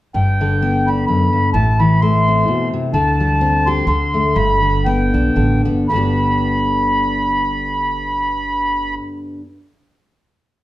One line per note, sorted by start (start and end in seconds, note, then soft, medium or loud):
0.14 1.03 G1 medium
0.14 1.07 G2 medium
0.14 0.89 G5 medium
0.41 1.54 D3 medium
0.62 1.52 B3 soft
0.87 1.52 D4 soft
0.87 1.05 B5 medium
1.06 1.33 F#2 soft
1.06 1.50 B5 medium
1.33 1.53 G2 soft
1.54 2.42 A1 medium
1.54 2.47 A2 medium
1.54 1.80 A5 medium
1.79 2.90 E3 medium
1.79 2.01 B5 medium
2.01 2.91 A3 soft
2.01 2.68 C6 medium
2.28 2.91 C4 soft
2.48 2.73 B2 medium
2.74 2.93 C3 soft
2.94 3.83 D2 medium
2.94 3.87 D3 medium
2.94 3.68 A5 medium
3.20 3.87 G3 medium
3.41 3.85 C4 medium
3.66 3.85 G4 medium
3.66 3.86 C6 medium
3.87 4.33 D2 medium
3.87 4.61 D3 medium
3.87 4.37 C6 medium
4.14 4.33 A3 soft
4.35 5.10 G1 medium
4.35 5.87 G2 medium
4.35 4.86 B5 loud
4.63 5.35 D3 medium
4.85 5.64 B3 medium
4.85 5.62 G5 medium
5.14 5.34 B1 medium
5.14 5.87 D4 soft
5.36 5.63 A1 medium
5.36 5.90 D3 medium
5.65 5.88 G1 medium
5.65 5.87 B3 soft
5.88 8.97 G1 medium
5.88 9.40 G2 medium
5.88 9.42 D3 medium
5.88 8.94 B5 medium
5.94 9.44 B3 soft
5.94 9.46 D4 soft
5.94 9.48 G4 soft